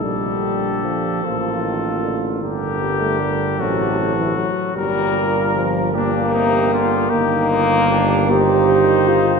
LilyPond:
<<
  \new Staff \with { instrumentName = "Flugelhorn" } { \time 6/8 \key g \minor \tempo 4. = 51 g'4. f'4. | bes'4. a'4 r8 | bes'4. g'4. | \key ees \major ees'8 f'8 g'8 c''4. | }
  \new Staff \with { instrumentName = "Trumpet" } { \time 6/8 \key g \minor a'2. | g'4. fis'4. | bes'4 r8 d'8 ees'8 f'8 | \key ees \major g'8 ees'8 d'8 ees'4. | }
  \new Staff \with { instrumentName = "French horn" } { \clef bass \time 6/8 \key g \minor g4 f8 bes4. | r8 g16 a16 g8 fis8. e16 fis8 | g4 f8 bes4. | \key ees \major bes4. g'4 f'8 | }
  \new Staff \with { instrumentName = "Trombone" } { \clef bass \time 6/8 \key g \minor d4. f8 ees8 d8 | d4. c4 r8 | bes,4. bes,8 c8 d8 | \key ees \major ees4. ees4. | }
  \new Staff \with { instrumentName = "Tuba" } { \clef bass \time 6/8 \key g \minor bes,,4. a,,4. | g,,4. a,,4 r8 | g,,2. | \key ees \major g,,2. | }
>>